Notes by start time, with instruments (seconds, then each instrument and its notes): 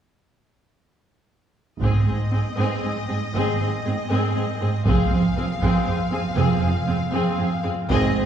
1.81 double bass section G#1, cello section G#2, viola section C4, violin section G#4 D#5, taiko
2.06 cello section G#2, viola section C4, violin section G#4
2.32 cello section G#2, viola section C4, violin section G#4
2.57 cello section G#2, viola section C4, violin section G#4
2.83 cello section G#2, viola section C4, violin section G#4
3.08 cello section G#2, viola section C4, violin section G#4
3.34 double bass section G#1, cello section G#2, viola section C4, violin section G#4
3.59 cello section G#2, viola section C4, violin section G#4
3.84 cello section G#2, viola section C4, violin section G#4
4.09 cello section G#2, viola section C4, violin section G#4
4.35 cello section G#2, viola section C4, violin section G#4
4.60 cello section G#2, viola section C4, violin section G#4
4.86 double bass section F1, cello section F2, viola section C4, violin section G#4 F5, taiko
5.11 cello section F2, viola section C4, violin section G#4
5.36 cello section F2, viola section C4, violin section G#4
5.62 cello section F2, viola section C4, violin section G#4, taiko
5.86 cello section F2, viola section C4, violin section G#4
6.11 cello section F2, viola section C4, violin section G#4
6.36 double bass section F1, cello section F2, viola section C4, violin section G#4
6.61 cello section F2, viola section C4, violin section G#4
6.87 cello section F2, viola section C4, violin section G#4
7.12 cello section F2, viola section C4, violin section G#4
7.38 cello section F2, viola section C4, violin section G#4
7.63 cello section F2, viola section C4, violin section G#4
7.89 double bass section G#1, cello section G#2, french horn section G#3 C4, viola section C4, violin section G#4 D#5, taiko
8.14 double bass section G#1, cello section G#2, viola section C4, violin section C4